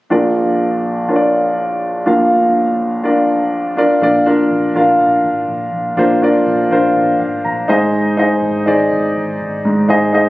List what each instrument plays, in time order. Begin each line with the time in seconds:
0.10 grand piano A#1 A#2 D4 F4 A#4 D5
1.08 grand piano D4 F4 A#4 C#5
1.16 grand piano D5
2.06 grand piano A#1 A#2 D4 F4 A#4 F5
3.03 grand piano D4 F4 A#4 D5
3.77 grand piano D4 F4 A#4 D5
4.01 picked electric bass A#1, grand piano A#2 D4 F4 A#4 D5
4.26 grand piano D4 F4 A#4 D5
4.51 picked electric bass A#1
4.75 picked electric bass A#1, grand piano D4 F4 A#4 F5
5.00 picked electric bass A#1
5.24 picked electric bass G#1
5.48 picked electric bass A#1
5.73 picked electric bass A#1
5.97 picked electric bass A#1, grand piano A#2 D4 F4 A#4 C5
6.22 grand piano D4 F4 A#4 D5
6.46 picked electric bass A#1
6.71 picked electric bass A#1, grand piano D4 F4 A#4 C5
6.95 picked electric bass A#1
7.20 picked electric bass G#1, grand piano F5
7.44 picked electric bass A#1, grand piano A#5
7.68 picked electric bass G#1, grand piano G#2 D#4 G#4 C5 D#5
8.17 grand piano D#4 G#4 C5 D#5
8.42 picked electric bass G#1
8.66 picked electric bass G#1, grand piano D#4 G#4 C5 D5
8.91 picked electric bass G#1
9.16 picked electric bass G#1
9.40 picked electric bass G#1
9.64 picked electric bass G#1, grand piano G#2
9.88 picked electric bass G#1, grand piano D#4 G#4 C5 D#5
10.13 grand piano D#4 G#4 C5 D#5